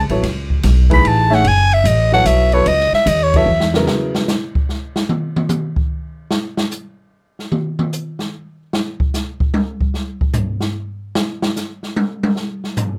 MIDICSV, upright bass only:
0, 0, Header, 1, 3, 480
1, 0, Start_track
1, 0, Tempo, 404313
1, 277, Time_signature, 3, 2, 24, 8
1, 15416, End_track
2, 0, Start_track
2, 0, Title_t, "Upright bass"
2, 0, Program_c, 0, 32
2, 109, Note_on_c, 0, 33, 67
2, 261, Note_off_c, 0, 33, 0
2, 269, Note_on_c, 0, 37, 79
2, 739, Note_off_c, 0, 37, 0
2, 760, Note_on_c, 0, 35, 102
2, 1225, Note_off_c, 0, 35, 0
2, 1233, Note_on_c, 0, 33, 87
2, 1701, Note_off_c, 0, 33, 0
2, 1710, Note_on_c, 0, 30, 80
2, 2175, Note_off_c, 0, 30, 0
2, 2183, Note_on_c, 0, 33, 95
2, 2656, Note_off_c, 0, 33, 0
2, 2668, Note_on_c, 0, 35, 93
2, 3139, Note_off_c, 0, 35, 0
2, 3155, Note_on_c, 0, 37, 82
2, 3455, Note_off_c, 0, 37, 0
2, 3632, Note_on_c, 0, 39, 100
2, 4098, Note_off_c, 0, 39, 0
2, 4105, Note_on_c, 0, 40, 91
2, 4578, Note_off_c, 0, 40, 0
2, 15416, End_track
3, 0, Start_track
3, 0, Title_t, "Muted upright bass strokes"
3, 3470, Note_on_c, 9, 29, 40
3, 3589, Note_off_c, 9, 29, 0
3, 15416, End_track
0, 0, End_of_file